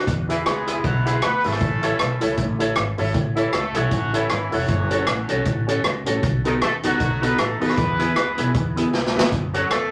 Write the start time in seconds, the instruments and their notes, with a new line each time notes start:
0.07 upright bass E2, kick, closed hi-hat
0.29 horn section E3 E4, clean electric guitar E4 G#4 B4, honky-tonk piano E4 G#4 B4 E5, closed hi-hat
0.46 upright bass C#2, horn section G#3 B3 E4 G#4, cross-stick, closed hi-hat
0.67 honky-tonk piano E4 G#4 B4 E5, clean electric guitar E4 G#4 B4, closed hi-hat
0.84 upright bass B1, horn section F#3 B3 F#4, honky-tonk piano B4 E5, kick, closed hi-hat
1.05 horn section G#3 G#4, honky-tonk piano E4 G#4 B4 E5, clean electric guitar E4 G#4 B4, closed hi-hat
1.22 upright bass D2, horn section B3 B4, muted clean electric guitar stroke, cross-stick, closed hi-hat
1.44 upright bass G#1, horn section A3 C#4 E4 A4, honky-tonk piano E4 G#4 B4 E5, clean electric guitar E4 G#4 B4, open hi-hat
1.52 cross-stick
1.61 upright bass A1, kick, closed hi-hat
1.82 clean electric guitar E4 A4 C#5, honky-tonk piano E4 A4 C#5 E5, cross-stick, closed hi-hat
1.99 upright bass B1, cross-stick, closed hi-hat
2.20 upright bass C#2, clean electric guitar E4 A4 C#5, honky-tonk piano E4 A4 C#5 E5, closed hi-hat
2.37 upright bass A1, kick, closed hi-hat
2.59 honky-tonk piano E4 A4 C#5 E5, clean electric guitar E4 A4 C#5, closed hi-hat
2.75 upright bass G#1, cross-stick, closed hi-hat
2.97 upright bass G#1, honky-tonk piano E4 A4 C#5 E5, clean electric guitar E4 A4 C#5, open hi-hat
3.14 upright bass A1, kick, closed hi-hat
3.35 horn section E3 E4, honky-tonk piano E4 A4 C#5 E5, clean electric guitar E4 A4 C#5, closed hi-hat
3.53 upright bass C#2, horn section A3 A4, cross-stick, closed hi-hat
3.74 upright bass B1, horn section F#3 A3 C#4 F#4, honky-tonk piano E4 A4 C#5 E5, clean electric guitar E4 A4 C#5, closed hi-hat
3.91 upright bass A1, honky-tonk piano C#5 E5, kick, closed hi-hat
4.13 horn section E3 E4, honky-tonk piano E4 A4 C#5 E5, clean electric guitar E4 A4 C#5, closed hi-hat
4.29 upright bass G#1, horn section E3 E4, muted clean electric guitar stroke, cross-stick, closed hi-hat
4.51 upright bass E1, horn section F#3 A3 C#4 F#4, honky-tonk piano E4 A4 C#5 E5, clean electric guitar E4 A4 C#5, open hi-hat
4.68 upright bass F#1, kick, closed hi-hat
4.90 honky-tonk piano C#4 F#4 A4 C#5, clean electric guitar C#4 F#4 A4, closed hi-hat
5.07 upright bass A1, cross-stick, closed hi-hat
5.28 upright bass B1, honky-tonk piano C#4 F#4 A4 C#5, clean electric guitar C#4 F#4 A4, closed hi-hat
5.45 upright bass A1, kick, closed hi-hat
5.67 honky-tonk piano C#4 F#4 A4 C#5, clean electric guitar C#4 F#4 A4, closed hi-hat
5.84 upright bass C#2, cross-stick, closed hi-hat
6.06 upright bass A1, honky-tonk piano C#4 F#4 A4 C#5, clean electric guitar C#4 F#4 A4, closed hi-hat
6.23 upright bass B1, kick, closed hi-hat
6.44 horn section D#3 D#4, clean electric guitar B3 D#4 A4, honky-tonk piano D#4 F#4 A4 B4, closed hi-hat
6.62 upright bass D#2, horn section A3 A4, cross-stick, closed hi-hat
6.83 upright bass C#2, horn section F#3 A3 D#4 F#4, clean electric guitar B3 D#4 A4, honky-tonk piano D#4 F#4 A4 B4, closed hi-hat
7.00 upright bass B1, honky-tonk piano A4 B4, kick, closed hi-hat
7.22 clean electric guitar B3 D#4 A4, horn section B3 B4, honky-tonk piano D#4 F#4 A4 B4, closed hi-hat
7.38 upright bass A1, horn section A3 A4, muted clean electric guitar stroke, cross-stick, closed hi-hat
7.60 upright bass D#2, clean electric guitar B3 D#4 A4, horn section B3 E4 G#4 B4, honky-tonk piano D#4 F#4 A4 B4, open hi-hat
7.69 cross-stick
7.77 upright bass E2, kick, closed hi-hat
7.98 clean electric guitar B3 E4 G#4, honky-tonk piano B3 E4 G#4 B4, closed hi-hat
8.16 upright bass C#2, cross-stick, closed hi-hat
8.37 upright bass B1, clean electric guitar B3 E4 G#4, honky-tonk piano B3 E4 G#4 B4, closed hi-hat
8.54 upright bass E2, kick, closed hi-hat
8.76 clean electric guitar B3 E4 G#4, honky-tonk piano B3 E4 G#4 B4, closed hi-hat
8.93 upright bass B1, muted clean electric guitar stroke, snare
9.06 snare
9.15 upright bass E2, clean electric guitar B3 E4 G#4, honky-tonk piano B3 E4 G#4 B4
9.19 snare
9.32 upright bass F#2, kick, closed hi-hat
9.54 horn section F#3 F#4, honky-tonk piano C#4 F#4 A4 C#5, clean electric guitar F#4 A4 C#5, closed hi-hat
9.70 upright bass E2, horn section A3 A4, cross-stick, closed hi-hat